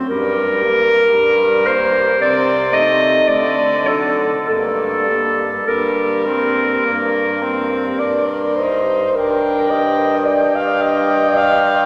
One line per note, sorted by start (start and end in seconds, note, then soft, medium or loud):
0.09 1.02 G2 medium
0.09 0.64 G3 medium
0.09 0.65 D4 medium
0.09 1.68 A#4 medium
0.62 1.15 A#3 medium
0.62 1.16 G4 medium
1.13 2.08 G2 medium
1.13 1.69 G3 medium
1.13 1.68 D4 medium
1.66 2.18 A#3 medium
1.66 2.20 G4 medium
1.66 2.20 C5 medium
2.19 3.16 C3 medium
2.19 2.74 C4 medium
2.19 2.75 C4 medium
2.19 2.75 D5 medium
2.72 3.27 A3 medium
2.72 3.29 D#4 medium
2.72 3.29 D#5 medium
3.28 4.32 D3 medium
3.28 3.86 A3 soft
3.28 3.89 C4 medium
3.28 3.89 D5 medium
3.85 4.29 F#3 soft
3.85 4.47 D4 soft
3.85 4.47 A4 medium
4.45 5.53 G2 medium
4.45 5.07 A#3 soft
4.45 5.10 D4 soft
4.45 5.69 A4 medium
5.05 5.65 G3 soft
5.05 5.69 A#3 soft
5.66 6.71 G2 medium
5.66 6.27 G3 medium
5.66 6.27 D4 soft
5.66 8.58 A#4 medium
6.25 6.85 A#3 soft
6.25 6.86 C4 medium
6.85 7.86 G2 medium
6.85 7.44 A#3 medium
6.85 7.44 D4 soft
7.42 7.82 A#3 soft
7.42 8.01 C4 medium
7.99 9.03 G2 medium
7.99 8.61 D4 medium
7.99 8.27 D5 medium
8.26 8.57 A#4 medium
8.56 9.16 D#4 medium
8.56 9.17 C5 medium
9.15 11.86 G2 medium
9.15 10.24 D4 medium
9.15 9.72 A#4 medium
9.15 10.24 G5 medium
9.71 10.26 D#5 medium
10.25 10.57 D5 medium
10.29 11.86 D4 medium
10.29 11.86 G5 medium
10.55 10.83 F5 medium
10.82 11.39 D#5 medium
11.37 11.86 F5 loud